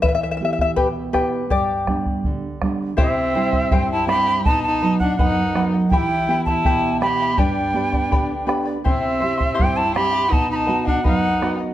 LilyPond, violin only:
\new Staff \with { instrumentName = "Violin" } { \time 2/4 \key e \minor \tempo 4 = 82 r2 | r2 | c'4 c'16 e'16 g'8 | dis'16 dis'8 d'16 dis'8. r16 |
e'8. e'8. g'8 | d'4. r8 | c'4 c'16 e'16 g'8 | dis'16 dis'8 d'16 dis'8. r16 | }